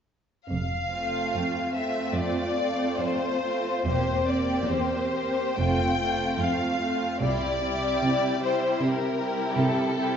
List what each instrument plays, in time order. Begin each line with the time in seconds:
0.48 double bass section F1, cello section F2, violin section F5
0.92 viola section A3 C4, violin section C4 F4
1.35 cello section F2
1.75 viola section A3 C4, violin section C4 F4 E5
2.15 cello section F2, violin section D5
2.57 viola section A3 C4, violin section C4 F4
3.00 cello section F2, violin section C5
3.43 viola section A3 C4, violin section C4 F4
3.84 double bass section E1, cello section E2, viola section A#3 C4, violin section C4 G4 C5
4.26 viola section A#3 C4, violin section C4 G4 D5
4.68 cello section E2, violin section C5
5.13 viola section A#3 C4, violin section C4 G4
5.58 double bass section F1, cello section F2, viola section A3 C4, violin section C4 F4 G5
6.00 viola section A3 C4, violin section C4 F4
6.40 cello section F2, violin section F5
6.80 viola section A3 C4, violin section C4 F4
7.21 double bass section C2, cello section C3, viola section G3 C4, violin section E4 G4 D5
7.63 viola section G3 C4, violin section E4 G4
8.04 cello section C3
8.41 viola section G3 C4, violin section E4 G4 C5
8.81 cello section C3, violin section A#4
9.19 viola section G3 C4, violin section E4 G4
9.57 cello section C3, violin section A4
9.96 viola section G3 C4, violin section E4 G4